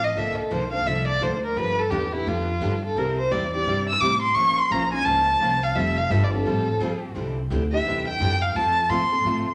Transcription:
Already playing: A1
0.04 D#5
0.15 A#1 D3 F3 A#3 D4 A4 E5
0.38 A4, muted upright bass stroke
0.51 B1 D3 F3 A#3 D4 A4 C5
0.72 A#3 D4 A4 F5
0.85 C2 D3 F3 A#3 D4 A4 E5
1.08 D5
1.21 D2 D3 F3 A#3 D4 A4 C5
1.45 A#4
1.56 G2 D3 F3 B3 D4 G4 B4
1.79 A4
1.90 E2 D3 F3 B3 D4 G4
2.13 B3 D4 E4 G4
2.26 F2 D3 F3 B3 D4 F4 G4
2.61 G2 D3 F3 B3 D4 G4
2.85 A4
2.96 C2 C3 G3 C4 E4 G4 A#4
3.19 C5
3.31 E2 C3 G3 C4 E4 G4 D5
3.54 C4 E4 G4 D5
3.66 G2 C3 G3 C4 E4 G4
3.89 E6
4.00 A2 C3 G3 C4 E4 G4 D6
4.22 C6
4.35 A#2 F3 A#3 C#4 F4 C5 C#6
4.58 C6
4.71 A#1 F3 A#3 C#4 F4 C5 A#5
4.92 C#4 F4 C5 G#5
5.05 C#2 F3 A#3 C#4 F4 C5 A5
5.40 C2 F3 A#3 C#4 F4 C5
5.63 F5
5.74 F1 F3 G3 C4 F4 A4 E5
5.98 F5
6.10 G1 F3 G3 C4 F4 A4 E5
6.24 D5
6.33 C4 F4 A4
6.46 A1 F3 G3 C4 F4 A4
6.80 A#1 F3 G3 C4 F4 A4
7.15 C2 C3 D3 E3 G3 C4 D4 E4 G4 C5
7.50 D2 C3 D3 E3 G3 C4 D4 E4 G4 C5
7.72 E3 D4 G4 E5
7.85 E2 C3 D3 E3 G3 C4 D4 E4 G4 C5
8.08 G5
8.20 F#2 C3 D3 E3 G3 C4 D4 E4 G4 C5
8.42 F5
8.55 F2 F3 A3 C4 F4 A4 A5
8.89 A#2 F3 A3 C4 F4 A4 C6
9.12 C4 F4 A4
9.25 A2 F3 A3 C4 F4 A4
9.46 muted upright bass stroke

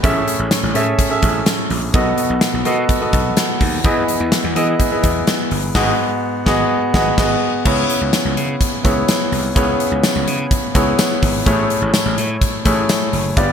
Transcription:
0.03 A1 A2 C#4 G#4 A4 E5, kick, closed hi-hat
0.28 closed hi-hat
0.39 A1
0.51 snare, closed hi-hat
0.63 A1
0.74 A2 C#4 G#4 A4 E5, closed hi-hat
0.99 kick, closed hi-hat
1.10 C#4 G#4 A4 E5
1.22 A1, kick, closed hi-hat
1.46 snare, closed hi-hat
1.70 A#1, open hi-hat
1.94 B1 B2 B3 F#4 A4 D#5, kick, closed hi-hat
2.18 closed hi-hat
2.30 B1
2.41 snare, closed hi-hat
2.54 B1
2.65 B2 B3 F#4 A4 D#5, closed hi-hat
2.89 kick, closed hi-hat
3.01 B3 F#4 A4 D#5
3.13 B1, kick, closed hi-hat
3.37 snare, closed hi-hat
3.61 D#2, kick, open hi-hat
3.84 E2 E3 B3 E4 G#4 D#5, kick, closed hi-hat
4.08 closed hi-hat
4.20 E2
4.32 snare, closed hi-hat
4.44 E2
4.55 E3 B3 E4 G#4 D#5, closed hi-hat
4.80 kick, closed hi-hat
4.91 B3 E4 G#4 D#5
5.03 E2, kick, closed hi-hat
5.27 snare, closed hi-hat
5.51 G1, open hi-hat
5.75 G#1 G#2 F#4 G#4 D#5, kick, snare, crash
5.80 B3
6.46 G#1 B3 F#4 G#4 D#5, kick, snare
6.94 G#1 F#4 G#4 D#5, kick, snare
6.99 B3
7.18 G#1 F#4 G#4 D#5, kick, snare, crash
7.23 B3
7.65 C#2 C#3 B3 E4 G#4 C#5, kick, crash
7.90 closed hi-hat
8.01 C#2
8.13 snare, closed hi-hat, tambourine
8.25 C#2
8.37 C#3, closed hi-hat
8.61 kick, closed hi-hat
8.84 C#2 B3 E4 G#4 C#5, kick, closed hi-hat
9.08 snare, closed hi-hat, tambourine
9.32 C2, open hi-hat
9.55 C#2 C#3 B3 E4 G#4 C#5, kick, closed hi-hat
9.80 closed hi-hat
9.92 C#2
10.03 snare, closed hi-hat, tambourine
10.15 C#2
10.28 C#3, closed hi-hat
10.51 kick, closed hi-hat
10.74 C#2 B3 E4 G#4 C#5, kick, closed hi-hat
10.99 snare, closed hi-hat, tambourine
11.23 G#1, kick, open hi-hat
11.46 A1 A2 A3 E4 G#4 C#5, kick, closed hi-hat
11.70 closed hi-hat
11.82 A1
11.94 snare, closed hi-hat, tambourine
12.06 A1
12.18 A2, closed hi-hat
12.41 kick, closed hi-hat
12.65 A1 A3 E4 G#4 C#5, kick, closed hi-hat
12.89 snare, closed hi-hat, tambourine
13.13 F#1, open hi-hat
13.37 G1 G2 B3 F4 G4 D5, kick, closed hi-hat

